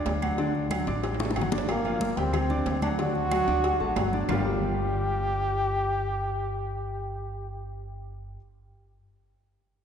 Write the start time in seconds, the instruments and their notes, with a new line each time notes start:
Already playing: grand piano D4 D5 D6
0.06 upright bass D2, cowbell, high conga, low timbale, low agogo
0.22 grand piano F#3 F#4 F#5, high conga, low agogo, claves
0.38 grand piano D3 D4 D5, cowbell, high conga
0.55 high conga
0.71 grand piano F#3 F#4 F#5, cowbell, high conga, low timbale, low agogo, claves
0.87 upright bass A1, grand piano D4 D5 D6, cowbell, high conga
1.03 cowbell, high conga, high timbale, low agogo
1.14 high timbale
1.20 grand piano A3 A4 A5, high bongo, high conga
1.25 low timbale
1.30 high bongo
1.36 upright bass G1, grand piano F#3 F#4 F#5, cowbell, low agogo, claves
1.42 low bongo
1.52 grand piano D4 D5 D6, low bongo, low conga
1.58 low timbale
1.69 trombone A#3, cowbell, high conga, low agogo, claves
1.85 grand piano F3 F4 F5, high conga, low agogo
2.01 cowbell, high conga, low timbale
2.17 upright bass D2, grand piano G3 G4 G5, trombone C4, cowbell, high conga, low agogo
2.33 cowbell, high conga, low conga, low agogo, claves
2.50 grand piano D4 D5 D6, high conga, low conga
2.66 upright bass D2, cowbell, high conga, low timbale, low agogo
2.82 grand piano F#3 F#4 F#5, trombone D4, high conga, low agogo, claves
2.98 grand piano D3 D4 D5, trombone F#4, cowbell, high conga
3.15 high conga
3.31 grand piano F#3 F#4 F#5, cowbell, high conga, low timbale, low agogo, claves
3.47 upright bass D2, grand piano D4 D5 D6, cowbell, high conga
3.64 cowbell, high conga, low agogo
3.80 upright bass A1, grand piano A3 A4 A5, high conga
3.96 upright bass G1, grand piano F#3 F#4 F#5, cowbell, high conga, low timbale, low agogo, claves
4.13 grand piano D4 D5 D6, high conga
4.29 upright bass G1, grand piano G3 D4 F4 G4 A#4 D5, trombone G4, low bongo, low conga, low timbale, claves